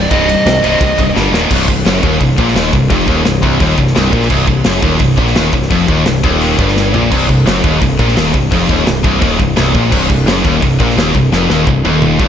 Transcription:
Already playing: distorted electric guitar G2 C3 G3 D#4
0.01 lead electric guitar D5
0.10 picked electric bass C1, distorted electric guitar C2 G2 C3 G3 D#4, lead electric guitar D#5, kick, ride
0.28 distorted electric guitar C2 G2, ride
0.46 distorted electric guitar C2 G2, picked electric bass C2, snare, ride
0.63 picked electric bass C1, distorted electric guitar C2 G2 C3, ride
0.80 distorted electric guitar C2 G2 C3 G3 D#4, picked electric bass C2, kick, ride
0.98 picked electric bass C1, distorted electric guitar C2 G2, kick, ride
1.14 picked electric bass G1, distorted electric guitar G2 D3 G3, snare
1.33 picked electric bass D#1, distorted electric guitar D#2 A#2 D#3, snare
1.50 picked electric bass C1, distorted electric guitar C2, kick, crash
1.68 picked electric bass C1, distorted electric guitar C2, kick
1.85 picked electric bass F#1, distorted electric guitar F#2, snare, open hi-hat
2.02 picked electric bass D#1, distorted electric guitar D#2, kick
2.20 picked electric bass C1, distorted electric guitar C2, kick, open hi-hat
2.38 picked electric bass A#1, distorted electric guitar A#2, kick
2.48 snare
2.55 picked electric bass D#1, distorted electric guitar D#2, snare, open hi-hat
2.73 picked electric bass C1, distorted electric guitar C2, kick
2.90 picked electric bass F1, distorted electric guitar F2, kick, open hi-hat
3.07 picked electric bass D#1, distorted electric guitar D#2, kick
3.25 picked electric bass C1, distorted electric guitar C2, snare, open hi-hat
3.42 picked electric bass C1, distorted electric guitar C2, kick
3.60 picked electric bass D#1, distorted electric guitar D#2, kick, open hi-hat
3.78 picked electric bass C1, distorted electric guitar C2, kick
3.87 snare
3.95 picked electric bass C1, distorted electric guitar C2, snare, open hi-hat
4.13 picked electric bass A#1, distorted electric guitar A#2, kick
4.22 snare
4.30 picked electric bass C1, distorted electric guitar C2, kick, crash
4.47 picked electric bass C1, distorted electric guitar C2, kick
4.64 picked electric bass F#1, distorted electric guitar F#2, snare, open hi-hat
4.82 picked electric bass D#1, distorted electric guitar D#2, kick
4.99 picked electric bass C1, distorted electric guitar C2, kick, open hi-hat
5.17 picked electric bass A#1, distorted electric guitar A#2, kick
5.27 snare
5.35 picked electric bass D#1, distorted electric guitar D#2, snare, open hi-hat
5.53 picked electric bass C1, distorted electric guitar C2, kick
5.62 snare
5.70 picked electric bass F1, distorted electric guitar F2, kick, open hi-hat
5.88 picked electric bass D#1, distorted electric guitar D#2, kick
6.06 picked electric bass C1, distorted electric guitar C2, snare, open hi-hat
6.23 picked electric bass D#1, distorted electric guitar D#2, kick
6.41 open hi-hat
6.58 picked electric bass G1, distorted electric guitar G2, kick
6.68 snare
6.77 snare
6.93 picked electric bass A#1, distorted electric guitar A#2, floor tom
7.11 picked electric bass C1, distorted electric guitar C2, kick, crash
7.29 picked electric bass C1, distorted electric guitar C2, kick
7.46 picked electric bass F#1, distorted electric guitar F#2, snare, open hi-hat
7.64 picked electric bass D#1, distorted electric guitar D#2, kick
7.81 picked electric bass C1, distorted electric guitar C2, kick, open hi-hat
7.99 picked electric bass A#1, distorted electric guitar A#2, kick
8.08 snare
8.16 picked electric bass D#1, distorted electric guitar D#2, snare, open hi-hat
8.34 picked electric bass C1, distorted electric guitar C2, kick
8.51 picked electric bass F1, distorted electric guitar F2, kick, open hi-hat
8.69 picked electric bass D#1, distorted electric guitar D#2, kick
8.86 picked electric bass C1, distorted electric guitar C2, snare, open hi-hat
9.03 picked electric bass C1, distorted electric guitar C2, kick
9.20 picked electric bass D#1, distorted electric guitar D#2, kick, open hi-hat
9.38 picked electric bass C1, distorted electric guitar C2, kick
9.56 picked electric bass C1, distorted electric guitar C2, snare, open hi-hat
9.74 picked electric bass A#1, distorted electric guitar A#2, kick
9.91 picked electric bass C1, distorted electric guitar C2, kick, crash
10.09 picked electric bass C1, distorted electric guitar C2, kick
10.27 picked electric bass F#1, distorted electric guitar F#2, snare, open hi-hat
10.44 picked electric bass D#1, distorted electric guitar D#2, kick
10.62 picked electric bass C1, distorted electric guitar C2, kick, open hi-hat
10.80 picked electric bass A#1, distorted electric guitar A#2, kick
10.90 snare
10.96 picked electric bass D#1, distorted electric guitar D#2, snare, open hi-hat
11.15 picked electric bass C1, distorted electric guitar C2, kick
11.32 picked electric bass F1, distorted electric guitar F2, snare
11.50 picked electric bass D#1, distorted electric guitar D#2, snare
11.67 picked electric bass C1, distorted electric guitar C2, kick
11.85 picked electric bass D#1, distorted electric guitar D#2, high tom
12.02 mid tom
12.20 picked electric bass G1, distorted electric guitar G2, kick

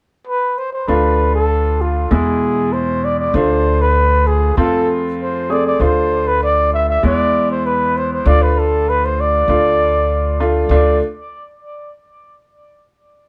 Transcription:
0.27 cornet B4
0.58 cornet C5
0.73 cornet C5
0.88 upright bass D2, upright piano A3 D4 F4, cornet B4
1.35 cornet A4
1.81 cornet F4
2.11 upright bass E2, upright piano B2 G#3 E4, cornet G#4
2.73 cornet C5
3.05 cornet D5
3.19 cornet D5
3.34 upright bass D2, upright piano A3 D4 F4, cornet C5
3.81 cornet B4
4.27 cornet G#4
4.57 upright bass F2, upright piano A3 C4 F4, cornet A4
5.21 cornet C5
5.49 upright piano A3 C4 G#4, cornet D5
5.67 cornet D5
5.80 upright bass D2, upright piano A3 D4 F4, cornet C5
6.27 cornet B4
6.43 cornet D5
6.74 cornet E5
6.89 cornet E5
7.03 upright bass E2, upright piano G#3 B3 E4, cornet D5
7.51 cornet C5
7.66 cornet B4
7.97 cornet C5
8.12 cornet C5
8.26 upright bass D2, upright piano A3 D4 F4, cornet D5
8.42 cornet B4
8.59 cornet A4
8.89 cornet B4
9.05 cornet C5
9.20 cornet D5
9.48 upright bass D2, upright piano A3 D4 F4
10.40 upright piano A3 D4 F4
10.69 upright bass D2, upright piano A3 D4 F4, cornet D5

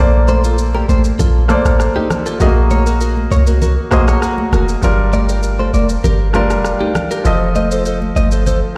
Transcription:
Already playing: 808-style bass A#1, grand piano A#3 A4
0.00 grand piano C5 D5
0.28 clean electric guitar A4 C5, high conga, shaker
0.44 clean electric guitar F4 A4, shaker
0.58 shaker
0.75 clean electric guitar G4 A#4, high conga
0.89 808-style bass A1, clean electric guitar A4 C5, high conga, shaker
1.04 shaker
1.19 808-style bass A#1, clean electric guitar F4 A4, low conga, shaker
1.48 grand piano A#3 A4 C5 D5, cross-stick, high conga, shaker
1.65 808-style bass A1, cross-stick, shaker
1.80 cross-stick, shaker
1.96 clean electric guitar D#4 G4, high conga
2.10 cross-stick, low conga, shaker
2.26 clean electric guitar F4 A4, shaker
2.39 808-style bass A#1, grand piano A3 F#4 G#4 D#5, clean electric guitar F#4 A#4, low conga, shaker
2.46 grand piano A#3
2.70 clean electric guitar A#4 C#5, high conga, shaker
2.87 clean electric guitar F#4 A#4, shaker
3.01 clean electric guitar F#4 A#4, shaker
3.17 high conga
3.31 808-style bass C2, clean electric guitar A#4 C#5, high conga, shaker
3.47 clean electric guitar F#4 A#4, shaker
3.62 clean electric guitar F#4 A#4, low conga, shaker
3.91 808-style bass A#1, grand piano A#3 F#4 G#4 D#5, clean electric guitar G#4 C5, cross-stick, high conga, shaker
4.08 clean electric guitar A#4 C#5, cross-stick, shaker
4.22 clean electric guitar F#4 A#4, cross-stick, shaker
4.38 high conga
4.52 808-style bass F1, clean electric guitar F#4 A#4, cross-stick, low conga, shaker
4.69 shaker
4.82 808-style bass G1, grand piano G3 D4 F4 A#4, low conga, shaker
5.13 clean electric guitar A#4 D5, high conga, shaker
5.29 clean electric guitar G4 A#4, shaker
5.43 shaker
5.59 clean electric guitar A4 C5, high conga
5.74 808-style bass F1, clean electric guitar A#4 D5, high conga, shaker
5.89 shaker
6.04 808-style bass G1, clean electric guitar G4 A#4, low conga, shaker
6.33 grand piano G3 D4 F4 A#4, cross-stick, high conga, shaker
6.50 808-style bass F1, cross-stick, shaker
6.64 cross-stick, shaker
6.81 clean electric guitar D#4 G4, high conga
6.95 cross-stick, low conga, shaker
7.11 clean electric guitar G4 A#4, shaker
7.24 808-style bass F1, grand piano F3 F4 A4 D#5, clean electric guitar A4 C5, low conga, shaker
7.55 clean electric guitar C5 D#5, high conga, shaker
7.71 clean electric guitar A4 C5, shaker
7.85 clean electric guitar A4 C5, shaker
8.02 high conga
8.16 808-style bass G1, clean electric guitar C5 D#5, high conga, shaker
8.32 clean electric guitar A4 C5, shaker
8.47 clean electric guitar A4 C5, low conga, shaker

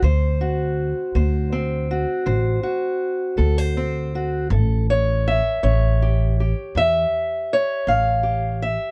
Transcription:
Already playing: steel-string acoustic guitar C4
0.03 upright bass D2, steel-string acoustic guitar D3 C5
0.41 steel-string acoustic guitar F#4
1.15 upright bass D2, steel-string acoustic guitar A3 C5
1.52 steel-string acoustic guitar C4
1.91 steel-string acoustic guitar F#4
2.26 upright bass A1, steel-string acoustic guitar D3 C5
2.63 steel-string acoustic guitar F#4
3.37 upright bass D2, steel-string acoustic guitar A3 A4
3.58 steel-string acoustic guitar C5
3.77 steel-string acoustic guitar C4
4.15 steel-string acoustic guitar F#4
4.50 upright bass A1, steel-string acoustic guitar A2 A4
4.90 steel-string acoustic guitar C#5
5.28 steel-string acoustic guitar E5
5.63 upright bass A1, steel-string acoustic guitar C#4 C#5
6.02 steel-string acoustic guitar G4
6.40 steel-string acoustic guitar G4
6.75 upright bass E2, steel-string acoustic guitar A2 E5
7.53 steel-string acoustic guitar C#5
7.87 upright bass A1, steel-string acoustic guitar C#4 F5
8.23 steel-string acoustic guitar G4
8.62 steel-string acoustic guitar E5

